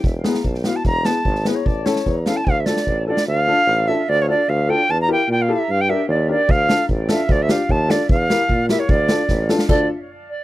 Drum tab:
CC |--------|--------|--------|--------|
SD |o-oo-oo-|o-o--oo-|--ooo-o-|--oo---o|
BD |o---o---|o---o---|o---o---|o---o---|

CC |--------|--------|--------|--------|
SD |--------|--------|--------|--------|
BD |--------|--------|--------|--------|

CC |--------|--------|--------|--------|
SD |--o---oo|--o---oo|--o---o-|--o-o-oo|
BD |o---o---|o---o---|o---o---|o---o---|

CC |x-------|
SD |--------|
BD |o-------|